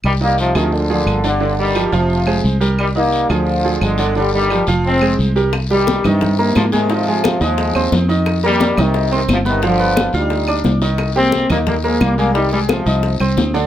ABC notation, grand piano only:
X:1
M:4/4
L:1/8
Q:1/4=176
K:Cm
V:1 name="Grand piano"
z [E,Ee]2 [F,FA]2 [F,FA]2 [D,Dd] | [D,Dd]2 [F,FG] [F,Ff]2 [A,Ac]2 [G,GB]- | [G,GB] [E,Ee]2 [F,FA]2 [F,FA]2 [D,Dd] | [D,Dd]2 [F,FG] [F,Ff]2 [A,Ac]2 [G,GB] |
z [G,Gg]2 [E,Ee]2 [B,Bb]2 [A,Aa] | [E,Ee] [A,Aa]2 [Eee']2 [Ccc']2 [E,Ee]- | [E,Ee] [B,Bb]2 [E,Ee]2 [Ccc']2 [=B,=B=b] | [F,Ff] [=B,=B=b]2 [Fff']2 [Ddd']2 [E,Ee]- |
[E,Ee] [B,Gg]2 [E,Ee]2 [B,Bb]2 [A,Aa] | [E,Ee] [A,Aa]2 [Eee']2 [Ccc']2 [D,Dd] |]